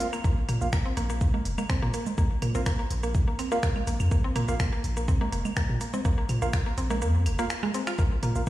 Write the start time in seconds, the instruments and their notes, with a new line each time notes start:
0.00 synth stab A#3 F4 F5, open hi-hat, shaker
0.13 synth arpeggio sound A#3, claves, shaker
0.24 sub bass A#1, synth arpeggio sound A#3, kick, shaker
0.49 sub bass A#2, synth arpeggio sound A#3, open hi-hat, claves
0.61 sub bass A#1, synth stab A#3 F4 F5, shaker
0.73 synth arpeggio sound A#3, finger snap, kick, shaker
0.86 synth arpeggio sound C4
0.97 sub bass A#1, synth arpeggio sound A#3, open hi-hat
1.10 synth arpeggio sound A#3, shaker
1.21 kick, shaker
1.34 synth arpeggio sound A#3, low conga
1.45 sub bass F1, open hi-hat
1.58 synth arpeggio sound A#3, low conga, claves, shaker
1.70 synth arpeggio sound C4, finger snap, kick, shaker
1.82 sub bass A#2, synth arpeggio sound A#3
1.94 synth arpeggio sound A#3, open hi-hat, shaker
2.07 low conga, shaker
2.18 sub bass A#1, synth arpeggio sound A#3, kick, shaker
2.42 sub bass A#2, synth arpeggio sound A#3, open hi-hat, claves
2.55 sub bass A#1, synth stab A#3 F4 F5, synth arpeggio sound C4, shaker
2.66 synth arpeggio sound A#3, finger snap, kick, shaker
2.79 synth arpeggio sound A#3
2.90 sub bass A#1, open hi-hat
3.03 synth arpeggio sound A#3, shaker
3.15 kick, shaker
3.28 synth arpeggio sound A#3
3.39 synth arpeggio sound C4, open hi-hat, claves
3.52 synth arpeggio sound A#3, synth stab A#3 F4 F5, shaker
3.63 synth arpeggio sound A#3, finger snap, kick, shaker
3.76 low conga, claves
3.87 sub bass A#1, synth arpeggio sound A#3, open hi-hat, shaker
4.00 sub bass F2, claves, shaker
4.11 sub bass A#1, synth arpeggio sound A#3, kick, shaker
4.24 synth arpeggio sound C4
4.36 sub bass A#2, synth arpeggio sound A#3, open hi-hat, claves
4.48 sub bass A#1, synth stab A#3 F4 F5, synth arpeggio sound A#3, shaker
4.60 finger snap, kick, shaker
4.73 synth arpeggio sound A#3
4.84 sub bass A#1, open hi-hat
4.97 synth arpeggio sound A#3, shaker
5.08 synth arpeggio sound C4, kick, shaker
5.21 synth arpeggio sound A#3, low conga
5.32 sub bass F1, synth arpeggio sound A#3, open hi-hat
5.45 low conga, claves, shaker
5.57 synth arpeggio sound A#3, finger snap, kick, shaker
5.69 sub bass A#2
5.81 synth arpeggio sound A#3, open hi-hat, shaker
5.94 synth arpeggio sound C4, low conga, shaker
6.05 sub bass A#1, synth arpeggio sound A#3, kick, shaker
6.18 synth arpeggio sound A#3
6.29 sub bass A#2, open hi-hat, claves, shaker
6.42 sub bass A#1, synth stab A#3 F4 F5, synth arpeggio sound A#3, shaker
6.53 finger snap, kick, shaker
6.66 synth arpeggio sound A#3
6.78 sub bass A#1, synth arpeggio sound C4, open hi-hat, shaker
6.90 synth arpeggio sound A#3, low conga, shaker
7.02 sub bass F2, synth arpeggio sound A#3, shaker
7.26 sub bass F1, open hi-hat, claves
7.39 synth stab A#3 F4 F5, synth arpeggio sound A#3, shaker
7.50 finger snap, shaker
7.63 synth arpeggio sound G#3, low conga, claves
7.74 synth arpeggio sound C4, open hi-hat, shaker
7.87 synth arpeggio sound F4, finger snap, claves, shaker
7.99 sub bass A#1, synth arpeggio sound A#3, kick, claves, shaker
8.23 sub bass A#2, synth arpeggio sound A#3, open hi-hat
8.36 sub bass A#1, synth stab A#3 F4 F5, shaker